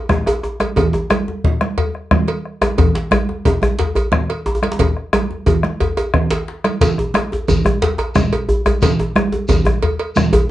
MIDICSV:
0, 0, Header, 1, 5, 480
1, 0, Start_track
1, 0, Tempo, 335383
1, 1102, Time_signature, 12, 3, 24, 8
1, 15038, End_track
2, 0, Start_track
2, 0, Title_t, "Bombo"
2, 136, Note_on_c, 9, 37, 84
2, 136, Note_on_c, 9, 43, 84
2, 279, Note_off_c, 9, 37, 0
2, 279, Note_off_c, 9, 43, 0
2, 377, Note_on_c, 9, 37, 29
2, 520, Note_off_c, 9, 37, 0
2, 621, Note_on_c, 9, 37, 28
2, 764, Note_off_c, 9, 37, 0
2, 864, Note_on_c, 9, 37, 68
2, 1007, Note_off_c, 9, 37, 0
2, 1099, Note_on_c, 9, 43, 93
2, 1242, Note_off_c, 9, 43, 0
2, 1343, Note_on_c, 9, 37, 28
2, 1486, Note_off_c, 9, 37, 0
2, 1580, Note_on_c, 9, 37, 91
2, 1723, Note_off_c, 9, 37, 0
2, 2064, Note_on_c, 9, 43, 92
2, 2207, Note_off_c, 9, 43, 0
2, 2303, Note_on_c, 9, 37, 71
2, 2446, Note_off_c, 9, 37, 0
2, 2546, Note_on_c, 9, 37, 27
2, 2689, Note_off_c, 9, 37, 0
2, 2789, Note_on_c, 9, 37, 30
2, 2932, Note_off_c, 9, 37, 0
2, 3021, Note_on_c, 9, 37, 89
2, 3021, Note_on_c, 9, 43, 87
2, 3164, Note_off_c, 9, 37, 0
2, 3164, Note_off_c, 9, 43, 0
2, 3269, Note_on_c, 9, 37, 33
2, 3412, Note_off_c, 9, 37, 0
2, 3512, Note_on_c, 9, 37, 30
2, 3655, Note_off_c, 9, 37, 0
2, 3746, Note_on_c, 9, 37, 74
2, 3889, Note_off_c, 9, 37, 0
2, 3987, Note_on_c, 9, 43, 95
2, 4130, Note_off_c, 9, 43, 0
2, 4223, Note_on_c, 9, 37, 30
2, 4367, Note_off_c, 9, 37, 0
2, 4465, Note_on_c, 9, 37, 93
2, 4608, Note_off_c, 9, 37, 0
2, 4945, Note_on_c, 9, 43, 90
2, 5088, Note_off_c, 9, 43, 0
2, 5194, Note_on_c, 9, 37, 69
2, 5337, Note_off_c, 9, 37, 0
2, 5432, Note_on_c, 9, 37, 27
2, 5575, Note_off_c, 9, 37, 0
2, 5666, Note_on_c, 9, 37, 29
2, 5810, Note_off_c, 9, 37, 0
2, 5907, Note_on_c, 9, 37, 93
2, 5907, Note_on_c, 9, 43, 84
2, 6050, Note_off_c, 9, 37, 0
2, 6050, Note_off_c, 9, 43, 0
2, 6149, Note_on_c, 9, 37, 30
2, 6292, Note_off_c, 9, 37, 0
2, 6387, Note_on_c, 9, 37, 27
2, 6530, Note_off_c, 9, 37, 0
2, 6624, Note_on_c, 9, 37, 70
2, 6767, Note_off_c, 9, 37, 0
2, 6867, Note_on_c, 9, 43, 88
2, 7010, Note_off_c, 9, 43, 0
2, 7108, Note_on_c, 9, 37, 27
2, 7251, Note_off_c, 9, 37, 0
2, 7343, Note_on_c, 9, 37, 84
2, 7486, Note_off_c, 9, 37, 0
2, 7825, Note_on_c, 9, 37, 28
2, 7825, Note_on_c, 9, 43, 90
2, 7968, Note_off_c, 9, 37, 0
2, 7968, Note_off_c, 9, 43, 0
2, 8062, Note_on_c, 9, 37, 67
2, 8205, Note_off_c, 9, 37, 0
2, 8307, Note_on_c, 9, 37, 25
2, 8450, Note_off_c, 9, 37, 0
2, 8547, Note_on_c, 9, 37, 28
2, 8690, Note_off_c, 9, 37, 0
2, 8784, Note_on_c, 9, 37, 81
2, 8784, Note_on_c, 9, 43, 85
2, 8927, Note_off_c, 9, 37, 0
2, 8927, Note_off_c, 9, 43, 0
2, 9506, Note_on_c, 9, 37, 66
2, 9649, Note_off_c, 9, 37, 0
2, 9740, Note_on_c, 9, 43, 80
2, 9883, Note_off_c, 9, 43, 0
2, 9988, Note_on_c, 9, 37, 28
2, 10131, Note_off_c, 9, 37, 0
2, 10231, Note_on_c, 9, 37, 89
2, 10374, Note_off_c, 9, 37, 0
2, 10714, Note_on_c, 9, 43, 86
2, 10857, Note_off_c, 9, 43, 0
2, 10957, Note_on_c, 9, 37, 73
2, 11100, Note_off_c, 9, 37, 0
2, 11191, Note_on_c, 9, 37, 25
2, 11334, Note_off_c, 9, 37, 0
2, 11432, Note_on_c, 9, 37, 30
2, 11575, Note_off_c, 9, 37, 0
2, 11674, Note_on_c, 9, 37, 87
2, 11674, Note_on_c, 9, 43, 87
2, 11817, Note_off_c, 9, 37, 0
2, 11817, Note_off_c, 9, 43, 0
2, 11915, Note_on_c, 9, 37, 28
2, 12058, Note_off_c, 9, 37, 0
2, 12150, Note_on_c, 9, 37, 28
2, 12293, Note_off_c, 9, 37, 0
2, 12393, Note_on_c, 9, 37, 73
2, 12536, Note_off_c, 9, 37, 0
2, 12628, Note_on_c, 9, 43, 95
2, 12771, Note_off_c, 9, 43, 0
2, 12877, Note_on_c, 9, 37, 30
2, 13020, Note_off_c, 9, 37, 0
2, 13113, Note_on_c, 9, 37, 96
2, 13256, Note_off_c, 9, 37, 0
2, 13591, Note_on_c, 9, 43, 88
2, 13735, Note_off_c, 9, 43, 0
2, 13835, Note_on_c, 9, 37, 72
2, 13978, Note_off_c, 9, 37, 0
2, 14075, Note_on_c, 9, 37, 26
2, 14218, Note_off_c, 9, 37, 0
2, 14312, Note_on_c, 9, 37, 28
2, 14455, Note_off_c, 9, 37, 0
2, 14554, Note_on_c, 9, 37, 82
2, 14554, Note_on_c, 9, 43, 89
2, 14697, Note_off_c, 9, 37, 0
2, 14697, Note_off_c, 9, 43, 0
2, 14792, Note_on_c, 9, 37, 30
2, 14936, Note_off_c, 9, 37, 0
2, 15038, End_track
3, 0, Start_track
3, 0, Title_t, "Djembe"
3, 147, Note_on_c, 9, 63, 70
3, 290, Note_off_c, 9, 63, 0
3, 386, Note_on_c, 9, 63, 99
3, 387, Note_off_c, 9, 63, 0
3, 387, Note_on_c, 9, 63, 53
3, 530, Note_off_c, 9, 63, 0
3, 622, Note_on_c, 9, 63, 68
3, 766, Note_off_c, 9, 63, 0
3, 861, Note_on_c, 9, 63, 76
3, 864, Note_on_c, 9, 62, 48
3, 1004, Note_off_c, 9, 63, 0
3, 1007, Note_off_c, 9, 62, 0
3, 1091, Note_on_c, 9, 63, 87
3, 1107, Note_off_c, 9, 63, 0
3, 1107, Note_on_c, 9, 63, 61
3, 1107, Note_on_c, 9, 64, 63
3, 1250, Note_off_c, 9, 63, 0
3, 1250, Note_off_c, 9, 64, 0
3, 1333, Note_on_c, 9, 63, 77
3, 1476, Note_off_c, 9, 63, 0
3, 1574, Note_on_c, 9, 63, 77
3, 1717, Note_off_c, 9, 63, 0
3, 1833, Note_on_c, 9, 63, 53
3, 1976, Note_off_c, 9, 63, 0
3, 2305, Note_on_c, 9, 62, 53
3, 2448, Note_off_c, 9, 62, 0
3, 2544, Note_on_c, 9, 63, 65
3, 2544, Note_on_c, 9, 64, 60
3, 2687, Note_off_c, 9, 63, 0
3, 2687, Note_off_c, 9, 64, 0
3, 2781, Note_on_c, 9, 62, 23
3, 2924, Note_off_c, 9, 62, 0
3, 3256, Note_on_c, 9, 63, 55
3, 3400, Note_off_c, 9, 63, 0
3, 3742, Note_on_c, 9, 63, 91
3, 3749, Note_on_c, 9, 62, 58
3, 3885, Note_off_c, 9, 63, 0
3, 3892, Note_off_c, 9, 62, 0
3, 3977, Note_on_c, 9, 64, 71
3, 3988, Note_off_c, 9, 64, 0
3, 3988, Note_on_c, 9, 63, 74
3, 3988, Note_on_c, 9, 64, 74
3, 4131, Note_off_c, 9, 63, 0
3, 4131, Note_off_c, 9, 64, 0
3, 4228, Note_on_c, 9, 62, 73
3, 4371, Note_off_c, 9, 62, 0
3, 4468, Note_on_c, 9, 64, 74
3, 4611, Note_off_c, 9, 64, 0
3, 4711, Note_on_c, 9, 63, 61
3, 4854, Note_off_c, 9, 63, 0
3, 4955, Note_on_c, 9, 63, 91
3, 5098, Note_off_c, 9, 63, 0
3, 5190, Note_on_c, 9, 64, 72
3, 5194, Note_on_c, 9, 62, 58
3, 5333, Note_off_c, 9, 64, 0
3, 5338, Note_off_c, 9, 62, 0
3, 5421, Note_on_c, 9, 62, 73
3, 5435, Note_on_c, 9, 63, 58
3, 5435, Note_on_c, 9, 64, 62
3, 5564, Note_off_c, 9, 62, 0
3, 5578, Note_off_c, 9, 63, 0
3, 5578, Note_off_c, 9, 64, 0
3, 5661, Note_on_c, 9, 64, 70
3, 5804, Note_off_c, 9, 64, 0
3, 6162, Note_on_c, 9, 63, 53
3, 6305, Note_off_c, 9, 63, 0
3, 6384, Note_on_c, 9, 63, 92
3, 6512, Note_off_c, 9, 63, 0
3, 6512, Note_on_c, 9, 63, 62
3, 6635, Note_on_c, 9, 62, 53
3, 6655, Note_off_c, 9, 63, 0
3, 6752, Note_off_c, 9, 62, 0
3, 6752, Note_on_c, 9, 62, 70
3, 6865, Note_on_c, 9, 63, 90
3, 6873, Note_off_c, 9, 62, 0
3, 6873, Note_off_c, 9, 63, 0
3, 6873, Note_on_c, 9, 62, 21
3, 6873, Note_on_c, 9, 63, 64
3, 6873, Note_on_c, 9, 64, 64
3, 7016, Note_off_c, 9, 62, 0
3, 7016, Note_off_c, 9, 63, 0
3, 7016, Note_off_c, 9, 64, 0
3, 7115, Note_on_c, 9, 62, 21
3, 7258, Note_off_c, 9, 62, 0
3, 7344, Note_on_c, 9, 63, 102
3, 7487, Note_off_c, 9, 63, 0
3, 7597, Note_on_c, 9, 62, 22
3, 7597, Note_on_c, 9, 63, 51
3, 7740, Note_off_c, 9, 62, 0
3, 7740, Note_off_c, 9, 63, 0
3, 7821, Note_on_c, 9, 63, 97
3, 7964, Note_off_c, 9, 63, 0
3, 8079, Note_on_c, 9, 62, 48
3, 8222, Note_off_c, 9, 62, 0
3, 8308, Note_on_c, 9, 63, 90
3, 8316, Note_off_c, 9, 63, 0
3, 8316, Note_on_c, 9, 63, 54
3, 8316, Note_on_c, 9, 64, 60
3, 8459, Note_off_c, 9, 63, 0
3, 8459, Note_off_c, 9, 64, 0
3, 8549, Note_on_c, 9, 63, 82
3, 8692, Note_off_c, 9, 63, 0
3, 9025, Note_on_c, 9, 62, 97
3, 9035, Note_on_c, 9, 64, 39
3, 9169, Note_off_c, 9, 62, 0
3, 9178, Note_off_c, 9, 64, 0
3, 9277, Note_on_c, 9, 62, 49
3, 9420, Note_off_c, 9, 62, 0
3, 9511, Note_on_c, 9, 62, 55
3, 9654, Note_off_c, 9, 62, 0
3, 9750, Note_on_c, 9, 62, 92
3, 9754, Note_on_c, 9, 63, 73
3, 9754, Note_on_c, 9, 64, 74
3, 9893, Note_off_c, 9, 62, 0
3, 9897, Note_off_c, 9, 63, 0
3, 9897, Note_off_c, 9, 64, 0
3, 9998, Note_on_c, 9, 63, 79
3, 10141, Note_off_c, 9, 63, 0
3, 10237, Note_on_c, 9, 63, 82
3, 10380, Note_off_c, 9, 63, 0
3, 10478, Note_on_c, 9, 63, 60
3, 10488, Note_off_c, 9, 63, 0
3, 10488, Note_on_c, 9, 63, 79
3, 10631, Note_off_c, 9, 63, 0
3, 10716, Note_on_c, 9, 64, 74
3, 10859, Note_off_c, 9, 64, 0
3, 10952, Note_on_c, 9, 64, 76
3, 10964, Note_on_c, 9, 62, 57
3, 11095, Note_off_c, 9, 64, 0
3, 11107, Note_off_c, 9, 62, 0
3, 11193, Note_on_c, 9, 62, 93
3, 11195, Note_on_c, 9, 63, 69
3, 11195, Note_on_c, 9, 64, 64
3, 11336, Note_off_c, 9, 62, 0
3, 11338, Note_off_c, 9, 63, 0
3, 11338, Note_off_c, 9, 64, 0
3, 11424, Note_on_c, 9, 63, 73
3, 11439, Note_on_c, 9, 62, 21
3, 11567, Note_off_c, 9, 63, 0
3, 11582, Note_off_c, 9, 62, 0
3, 11672, Note_on_c, 9, 63, 74
3, 11815, Note_off_c, 9, 63, 0
3, 11912, Note_on_c, 9, 63, 81
3, 11925, Note_off_c, 9, 63, 0
3, 11925, Note_on_c, 9, 63, 56
3, 12068, Note_off_c, 9, 63, 0
3, 12145, Note_on_c, 9, 64, 85
3, 12288, Note_off_c, 9, 64, 0
3, 12390, Note_on_c, 9, 64, 80
3, 12394, Note_on_c, 9, 62, 52
3, 12533, Note_off_c, 9, 64, 0
3, 12537, Note_off_c, 9, 62, 0
3, 12624, Note_on_c, 9, 63, 63
3, 12624, Note_on_c, 9, 64, 60
3, 12632, Note_on_c, 9, 62, 89
3, 12767, Note_off_c, 9, 63, 0
3, 12767, Note_off_c, 9, 64, 0
3, 12775, Note_off_c, 9, 62, 0
3, 12874, Note_on_c, 9, 63, 83
3, 13017, Note_off_c, 9, 63, 0
3, 13115, Note_on_c, 9, 63, 83
3, 13258, Note_off_c, 9, 63, 0
3, 13346, Note_on_c, 9, 63, 54
3, 13348, Note_off_c, 9, 63, 0
3, 13348, Note_on_c, 9, 63, 76
3, 13491, Note_off_c, 9, 63, 0
3, 13586, Note_on_c, 9, 64, 84
3, 13729, Note_off_c, 9, 64, 0
3, 13816, Note_on_c, 9, 64, 83
3, 13831, Note_on_c, 9, 62, 52
3, 13959, Note_off_c, 9, 64, 0
3, 13974, Note_off_c, 9, 62, 0
3, 14072, Note_on_c, 9, 63, 65
3, 14072, Note_on_c, 9, 64, 61
3, 14215, Note_off_c, 9, 63, 0
3, 14215, Note_off_c, 9, 64, 0
3, 14780, Note_on_c, 9, 64, 108
3, 14791, Note_on_c, 9, 63, 56
3, 14923, Note_off_c, 9, 64, 0
3, 14935, Note_off_c, 9, 63, 0
3, 15038, End_track
4, 0, Start_track
4, 0, Title_t, "Shekere"
4, 9754, Note_on_c, 9, 82, 57
4, 9897, Note_off_c, 9, 82, 0
4, 10712, Note_on_c, 9, 82, 59
4, 10855, Note_off_c, 9, 82, 0
4, 11668, Note_on_c, 9, 82, 65
4, 11811, Note_off_c, 9, 82, 0
4, 12619, Note_on_c, 9, 82, 62
4, 12763, Note_off_c, 9, 82, 0
4, 13577, Note_on_c, 9, 82, 63
4, 13720, Note_off_c, 9, 82, 0
4, 14538, Note_on_c, 9, 82, 60
4, 14681, Note_off_c, 9, 82, 0
4, 15038, End_track
5, 0, Start_track
5, 0, Title_t, "Drums"
5, 132, Note_on_c, 9, 63, 72
5, 132, Note_on_c, 9, 64, 64
5, 275, Note_off_c, 9, 63, 0
5, 275, Note_off_c, 9, 64, 0
5, 392, Note_on_c, 9, 56, 43
5, 535, Note_off_c, 9, 56, 0
5, 858, Note_on_c, 9, 63, 53
5, 869, Note_on_c, 9, 56, 46
5, 1001, Note_off_c, 9, 63, 0
5, 1013, Note_off_c, 9, 56, 0
5, 1102, Note_on_c, 9, 56, 55
5, 1105, Note_on_c, 9, 64, 66
5, 1245, Note_off_c, 9, 56, 0
5, 1248, Note_off_c, 9, 64, 0
5, 1355, Note_on_c, 9, 63, 23
5, 1498, Note_off_c, 9, 63, 0
5, 1583, Note_on_c, 9, 56, 44
5, 1583, Note_on_c, 9, 63, 74
5, 1726, Note_off_c, 9, 56, 0
5, 1727, Note_off_c, 9, 63, 0
5, 2068, Note_on_c, 9, 64, 65
5, 2211, Note_off_c, 9, 64, 0
5, 2307, Note_on_c, 9, 63, 60
5, 2450, Note_off_c, 9, 63, 0
5, 2543, Note_on_c, 9, 56, 45
5, 2686, Note_off_c, 9, 56, 0
5, 3021, Note_on_c, 9, 63, 69
5, 3021, Note_on_c, 9, 64, 74
5, 3164, Note_off_c, 9, 63, 0
5, 3164, Note_off_c, 9, 64, 0
5, 3265, Note_on_c, 9, 56, 45
5, 3408, Note_off_c, 9, 56, 0
5, 3745, Note_on_c, 9, 56, 40
5, 3747, Note_on_c, 9, 63, 51
5, 3888, Note_off_c, 9, 56, 0
5, 3890, Note_off_c, 9, 63, 0
5, 3983, Note_on_c, 9, 56, 52
5, 3985, Note_on_c, 9, 64, 73
5, 4127, Note_off_c, 9, 56, 0
5, 4129, Note_off_c, 9, 64, 0
5, 4221, Note_on_c, 9, 63, 23
5, 4364, Note_off_c, 9, 63, 0
5, 4455, Note_on_c, 9, 63, 70
5, 4463, Note_on_c, 9, 56, 45
5, 4598, Note_off_c, 9, 63, 0
5, 4607, Note_off_c, 9, 56, 0
5, 4944, Note_on_c, 9, 56, 46
5, 4949, Note_on_c, 9, 64, 65
5, 5087, Note_off_c, 9, 56, 0
5, 5092, Note_off_c, 9, 64, 0
5, 5178, Note_on_c, 9, 63, 57
5, 5321, Note_off_c, 9, 63, 0
5, 5431, Note_on_c, 9, 56, 47
5, 5575, Note_off_c, 9, 56, 0
5, 5675, Note_on_c, 9, 56, 46
5, 5818, Note_off_c, 9, 56, 0
5, 5895, Note_on_c, 9, 63, 75
5, 5895, Note_on_c, 9, 64, 74
5, 6038, Note_off_c, 9, 63, 0
5, 6038, Note_off_c, 9, 64, 0
5, 6154, Note_on_c, 9, 56, 46
5, 6297, Note_off_c, 9, 56, 0
5, 6620, Note_on_c, 9, 63, 52
5, 6633, Note_on_c, 9, 56, 47
5, 6763, Note_off_c, 9, 63, 0
5, 6776, Note_off_c, 9, 56, 0
5, 6859, Note_on_c, 9, 63, 21
5, 6859, Note_on_c, 9, 64, 64
5, 6868, Note_on_c, 9, 56, 55
5, 7002, Note_off_c, 9, 63, 0
5, 7002, Note_off_c, 9, 64, 0
5, 7011, Note_off_c, 9, 56, 0
5, 7347, Note_on_c, 9, 63, 73
5, 7349, Note_on_c, 9, 56, 49
5, 7490, Note_off_c, 9, 63, 0
5, 7492, Note_off_c, 9, 56, 0
5, 7591, Note_on_c, 9, 63, 23
5, 7734, Note_off_c, 9, 63, 0
5, 7827, Note_on_c, 9, 56, 46
5, 7829, Note_on_c, 9, 64, 66
5, 7970, Note_off_c, 9, 56, 0
5, 7972, Note_off_c, 9, 64, 0
5, 8068, Note_on_c, 9, 63, 53
5, 8211, Note_off_c, 9, 63, 0
5, 8308, Note_on_c, 9, 56, 47
5, 8451, Note_off_c, 9, 56, 0
5, 8550, Note_on_c, 9, 56, 46
5, 8693, Note_off_c, 9, 56, 0
5, 8789, Note_on_c, 9, 64, 74
5, 8932, Note_off_c, 9, 64, 0
5, 9032, Note_on_c, 9, 56, 51
5, 9175, Note_off_c, 9, 56, 0
5, 9504, Note_on_c, 9, 63, 64
5, 9512, Note_on_c, 9, 56, 49
5, 9648, Note_off_c, 9, 63, 0
5, 9655, Note_off_c, 9, 56, 0
5, 9743, Note_on_c, 9, 64, 65
5, 9749, Note_on_c, 9, 56, 60
5, 9886, Note_off_c, 9, 64, 0
5, 9892, Note_off_c, 9, 56, 0
5, 9981, Note_on_c, 9, 63, 23
5, 10124, Note_off_c, 9, 63, 0
5, 10217, Note_on_c, 9, 63, 70
5, 10228, Note_on_c, 9, 56, 46
5, 10360, Note_off_c, 9, 63, 0
5, 10371, Note_off_c, 9, 56, 0
5, 10707, Note_on_c, 9, 64, 68
5, 10710, Note_on_c, 9, 56, 48
5, 10850, Note_off_c, 9, 64, 0
5, 10853, Note_off_c, 9, 56, 0
5, 10940, Note_on_c, 9, 63, 58
5, 11083, Note_off_c, 9, 63, 0
5, 11192, Note_on_c, 9, 56, 55
5, 11335, Note_off_c, 9, 56, 0
5, 11432, Note_on_c, 9, 56, 45
5, 11575, Note_off_c, 9, 56, 0
5, 11671, Note_on_c, 9, 63, 73
5, 11671, Note_on_c, 9, 64, 78
5, 11814, Note_off_c, 9, 63, 0
5, 11814, Note_off_c, 9, 64, 0
5, 11917, Note_on_c, 9, 56, 49
5, 12060, Note_off_c, 9, 56, 0
5, 12387, Note_on_c, 9, 63, 54
5, 12392, Note_on_c, 9, 56, 46
5, 12530, Note_off_c, 9, 63, 0
5, 12536, Note_off_c, 9, 56, 0
5, 12632, Note_on_c, 9, 56, 70
5, 12638, Note_on_c, 9, 64, 73
5, 12775, Note_off_c, 9, 56, 0
5, 12781, Note_off_c, 9, 64, 0
5, 12869, Note_on_c, 9, 63, 21
5, 13012, Note_off_c, 9, 63, 0
5, 13105, Note_on_c, 9, 63, 79
5, 13249, Note_off_c, 9, 63, 0
5, 13581, Note_on_c, 9, 64, 73
5, 13591, Note_on_c, 9, 56, 56
5, 13724, Note_off_c, 9, 64, 0
5, 13734, Note_off_c, 9, 56, 0
5, 13825, Note_on_c, 9, 63, 61
5, 13968, Note_off_c, 9, 63, 0
5, 14063, Note_on_c, 9, 56, 53
5, 14206, Note_off_c, 9, 56, 0
5, 14304, Note_on_c, 9, 56, 48
5, 14447, Note_off_c, 9, 56, 0
5, 14545, Note_on_c, 9, 63, 78
5, 14545, Note_on_c, 9, 64, 75
5, 14688, Note_off_c, 9, 63, 0
5, 14688, Note_off_c, 9, 64, 0
5, 14785, Note_on_c, 9, 56, 49
5, 14928, Note_off_c, 9, 56, 0
5, 15038, End_track
0, 0, End_of_file